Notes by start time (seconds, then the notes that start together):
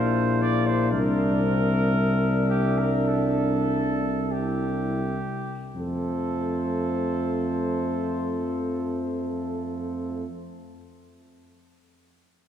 Already playing: A#1 D4 E4 C5 F5
0.42 D5
0.67 C5
0.91 C2 D4 A#4 E5
1.44 C4
1.97 D4
2.49 G4
2.78 A#4
3.07 A4
4.32 E4 G4
5.75 F2 F3 A3 A4 C5